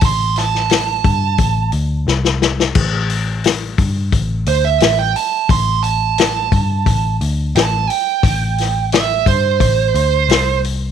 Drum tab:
CC |----------------|x---------------|----------------|----------------|
HH |o-o-o-o-o-o-----|--o-o-o-o-o-o-o-|o-o-o-o-o-o-o-o-|o-o-o-o-o-o-o-o-|
SD |--ooo-------oooo|----o-------o---|----o-------o---|--o-o-------o---|
BD |o-----o-o-------|o-----o-o-------|o-----o-o-------|o-----o-o-------|